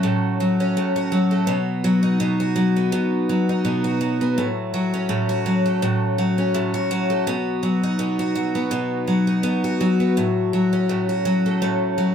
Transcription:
Already playing: F#3 A3 C#4 F#4
0.03 A2
0.40 F#3
0.60 C#4
0.77 A2
0.96 F#4
1.12 F#3
1.31 A3
1.47 B2
1.84 F#3
2.03 D#4
2.20 B2
2.40 F#4
2.56 F#3
2.76 B3
2.92 B2
3.29 F#3
3.49 D#4
3.65 B2
3.84 F#4
4.01 F#3
4.21 B3
4.38 A2
4.74 F#3
4.94 C#4
5.09 A2
5.29 F#4
5.46 F#3
5.66 A3
5.82 A2
6.18 F#3
6.38 C#4
6.54 A2
6.74 F#4
6.91 F#3
7.10 A3
7.27 B2
7.63 F#3
7.83 D#4
7.99 B2
8.19 F#4
8.35 F#3
8.55 B3
8.71 B2
9.07 F#3
9.27 D#4
9.43 B2
9.64 F#4
9.81 F#3
10.00 B3
10.17 A2
10.53 F#3
10.73 C#4
10.89 A2
11.09 F#4
11.25 F#3
11.46 A3
11.62 A2
11.98 F#3

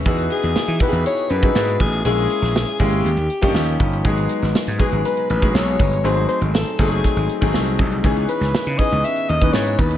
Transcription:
0.05 E2 B3 D#4 E4 F#4 G#4, kick, closed hi-hat
0.18 closed hi-hat
0.30 G#4, closed hi-hat
0.43 E2, closed hi-hat
0.56 muted slap bass stroke, snare
0.68 E3, closed hi-hat
0.80 B3 D#4 E4 F#4 G4 B4, kick, open hi-hat
0.88 G#4
0.92 E2, closed hi-hat
1.06 C#5, closed hi-hat
1.17 closed hi-hat
1.30 F#2 B4, closed hi-hat
1.42 B3 D#4 E4 F#4 G#4, kick, closed hi-hat
1.55 G#2, snare
1.68 closed hi-hat
1.80 A1 G#4, kick, open hi-hat
1.93 closed hi-hat
2.04 A#1 G#3 A#3 C#4 E4 G#4, closed hi-hat
2.18 closed hi-hat
2.30 closed hi-hat
2.42 A#1, snare, closed hi-hat
2.56 snare
2.67 closed hi-hat
2.80 G#1 G#3 A#3 C#4 E4 G4 G#4, kick, open hi-hat
2.93 closed hi-hat
3.05 D#2, closed hi-hat
3.17 D#2, closed hi-hat
3.30 closed hi-hat
3.41 G2 F3 A#3 C#4 D#4 G4, kick, closed hi-hat
3.54 D#2, snare
3.68 closed hi-hat
3.80 G1, kick, open hi-hat
3.93 closed hi-hat
4.05 G#1 F#3 G#3 B3 D#4 G#4, kick, closed hi-hat
4.18 closed hi-hat
4.29 closed hi-hat
4.42 G#1, snare, closed hi-hat
4.55 snare
4.67 G#2, closed hi-hat
4.78 F#3 G#3 B3 D#4 G#4, kick, open hi-hat
4.92 G#1, closed hi-hat
5.05 B4, closed hi-hat
5.17 closed hi-hat
5.30 A1 B4, closed hi-hat
5.41 F#3 G#3 B3 D#4 G#4, kick, closed hi-hat
5.54 B1 C#5, snare
5.68 closed hi-hat
5.79 G1, kick, open hi-hat
5.93 closed hi-hat
6.04 G#1 F#3 A3 C4 D#4 G#4 C5, closed hi-hat
6.17 closed hi-hat
6.29 C5, closed hi-hat
6.41 G#1, closed hi-hat
6.54 A4, snare
6.67 closed hi-hat
6.79 F#1 F#3 A3 C4 D#4 G#4 A4, kick, snare, open hi-hat
6.90 G#4, closed hi-hat
7.04 kick, closed hi-hat
7.16 G#1, closed hi-hat
7.30 closed hi-hat
7.41 G#1 F#3 A3 C4 D#4 G#4, kick, closed hi-hat
7.54 C2, snare
7.67 closed hi-hat
7.79 C2, kick, open hi-hat
7.92 closed hi-hat
8.04 C#2 E3 B3 C#4 D#4 G#4, kick, closed hi-hat
8.17 closed hi-hat
8.29 B4, closed hi-hat
8.41 C#2, snare, closed hi-hat
8.55 snare
8.67 C#3, closed hi-hat
8.78 E3 B3 C#4 D#4 G#4 D#5, kick, open hi-hat
8.92 C#2, closed hi-hat
9.04 E5, closed hi-hat
9.16 closed hi-hat
9.29 D#2 D#5, closed hi-hat
9.41 E3 B3 C#4 D#4 B4, kick, closed hi-hat
9.53 G#2 C#5, snare
9.67 closed hi-hat
9.79 D#2 B4, kick, open hi-hat
9.91 closed hi-hat

